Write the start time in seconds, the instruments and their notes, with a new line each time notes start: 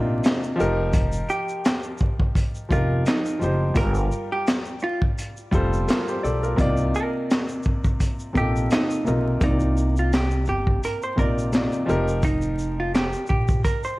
Already playing: upright bass A#1, upright piano C3 A#3 D4 D#4 F4
0.24 snare, clap, closed hi-hat, shaker
0.43 shaker
0.56 upright piano F3 D#4 G4
0.60 upright bass F1, upright piano A#4, shaker
0.93 kick, closed hi-hat, shaker
1.12 shaker
1.29 hollow-body jazz guitar G4, shaker
1.49 shaker
1.65 snare, clap, closed hi-hat, shaker
1.83 shaker
1.98 kick, shaker
2.20 kick
2.35 kick, closed hi-hat, shaker
2.55 shaker
2.69 upright bass F1, upright piano F3 D#4 G4, hollow-body jazz guitar F4, kick, shaker
2.73 upright piano A#4
3.06 hollow-body jazz guitar D#4, snare, clap, closed hi-hat, shaker
3.26 shaker
3.39 upright bass F#1, upright piano F3 D#4 G4, shaker
3.44 upright piano C5
3.74 upright bass G1, upright piano G3 F4 G4, hollow-body jazz guitar A#4, kick, closed hi-hat, shaker
3.78 upright piano A#4
3.94 shaker
4.12 shaker
4.32 hollow-body jazz guitar G4
4.47 snare, clap, closed hi-hat, shaker
4.65 shaker
4.80 shaker
4.84 hollow-body jazz guitar F4
5.02 kick
5.18 closed hi-hat, shaker
5.37 shaker
5.51 upright bass F1, upright piano G3 F4 A4 C5, kick, shaker
5.73 shaker
5.88 upright piano F4 A#4, snare, clap, closed hi-hat, shaker
6.08 upright piano G4 C5, shaker
6.23 upright bass B1, upright piano A4 D5, shaker
6.43 upright piano F4 A#4, shaker
6.56 upright bass C2, upright piano C3 A#3 D#4 F4, kick, closed hi-hat, shaker
6.61 upright piano D5
6.77 shaker
6.95 hollow-body jazz guitar A#4, shaker
7.31 snare, clap, closed hi-hat, shaker
7.48 shaker
7.63 kick, shaker
7.84 kick, shaker
8.00 kick, closed hi-hat, shaker
8.19 shaker
8.33 upright bass A#1, upright piano C3 A#3 D#4 F4, kick, shaker
8.37 hollow-body jazz guitar G4, upright piano A4
8.56 shaker
8.71 hollow-body jazz guitar D#4, snare, clap, closed hi-hat, shaker
8.90 shaker
9.04 upright bass B1, upright piano C3 A#3 D#4 F4 A#4, shaker
9.40 upright bass C2, upright piano C3 A#3 D#4 F4, kick, closed hi-hat, shaker
9.44 hollow-body jazz guitar D#4, upright piano D5
9.60 shaker
9.77 shaker
9.97 hollow-body jazz guitar F4, shaker
10.13 hollow-body jazz guitar G4, snare, clap, closed hi-hat, shaker
10.31 shaker
10.45 upright bass G1, hollow-body jazz guitar G4, shaker
10.67 kick
10.83 hollow-body jazz guitar A#4, closed hi-hat, shaker
11.02 hollow-body jazz guitar C5, shaker
11.16 upright bass A#1, upright piano C3 A#3 D#4 F4, hollow-body jazz guitar A#4, kick, shaker
11.20 upright piano D5
11.38 shaker
11.52 upright piano C3 A#3 D#4 F4, snare, closed hi-hat, shaker
11.56 upright piano D5, clap
11.72 shaker
11.86 upright bass F1, upright piano F3 D#4 G4 A#4, shaker
12.08 shaker
12.23 hollow-body jazz guitar D#4, kick, closed hi-hat, shaker
12.42 shaker
12.58 shaker
12.80 hollow-body jazz guitar F4
12.94 hollow-body jazz guitar G4, snare, clap, closed hi-hat, shaker
13.13 shaker
13.27 upright bass A#1, hollow-body jazz guitar G4, kick, shaker
13.48 kick, shaker
13.64 hollow-body jazz guitar A#4, kick, closed hi-hat, shaker
13.83 hollow-body jazz guitar C5, shaker